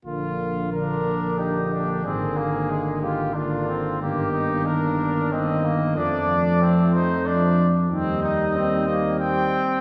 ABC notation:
X:1
M:3/4
L:1/8
Q:1/4=92
K:Bb
V:1 name="Cornet"
F2 B2 G2 | _A3 G F2 | G2 B2 e2 | d3 c d z |
e4 g2 |]
V:2 name="Trumpet"
z2 D2 E D | C B, _A, F D C | B, E D2 C B, | D2 C E D z |
C E C B, C2 |]
V:3 name="French horn"
B,2 B,4 | B,4 B,2 | B,2 B,2 B,2 | A,6 |
E2 C C3 |]
V:4 name="Trombone" clef=bass
D,2 D,4 | D,4 D,2 | E,2 E,2 E,2 | F,6 |
G,6 |]
V:5 name="Tuba" clef=bass
B,,,6 | _A,,,6 | G,,,6 | F,,6 |
E,,6 |]